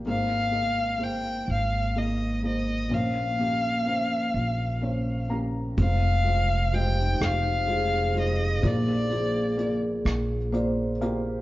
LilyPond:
<<
  \new Staff \with { instrumentName = "Violin" } { \time 6/8 \key f \minor \tempo 4. = 42 f''4 g''8 f''8 ees''8 ees''8 | f''2~ f''8 r8 | f''4 g''8 f''4 ees''8 | d''4 r2 | }
  \new Staff \with { instrumentName = "Vibraphone" } { \time 6/8 \key f \minor r2. | r2. | r4 <g' c''>16 ees'8. aes'16 c''16 f''8~ | f''8 aes'4. c''4 | }
  \new Staff \with { instrumentName = "Felt piano" } { \time 6/8 \key f \minor <bes aes' c''>8 <bes aes' ees''>8 <bes aes' c''>4 <bes aes' ees''>8 <bes aes' c''>8 | <bes des' c''>8 <bes des' g'>8 <bes des' c''>4 <bes des' c'' des''>8 <bes des' g' bes''>8 | <aes f' c''>8 <aes f' c''>8 <aes f' ees''>4 <aes f' c''>8 <aes f' c''>8 | <bes f' d''>8 <bes f' c''>8 <bes f' d''>4 <bes f' d''>8 <bes f' g' f''>8 | }
  \new Staff \with { instrumentName = "Felt piano" } { \clef bass \time 6/8 \key f \minor <aes,, aes,>2. | <bes,, bes,>2. | <f,, f,>2. | <bes,, bes,>2. | }
  \new Staff \with { instrumentName = "Upright bass" } { \clef bass \time 6/8 \key f \minor aes,,4. aes,,4. | bes,,4. bes,,4. | f,,4. f,,4. | bes,,4. bes,,4. | }
  \new DrumStaff \with { instrumentName = "Drums" } \drummode { \time 6/8 r4. r4. | r4. r4. | <hh bd>8 hh8 hh8 <hh ss>8 hh8 hh8 | <hh bd>8 hh8 hh8 <hh ss>8 hh8 hh8 | }
>>